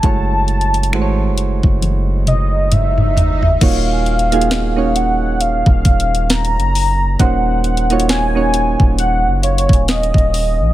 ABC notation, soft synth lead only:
X:1
M:4/4
L:1/16
Q:"Swing 16ths" 1/4=67
K:Gblyd
V:1 name="Soft synth lead"
=a6- a z3 e2 _f4 | f6 g2 f4 b4 | g4 a4 g2 d2 e4 |]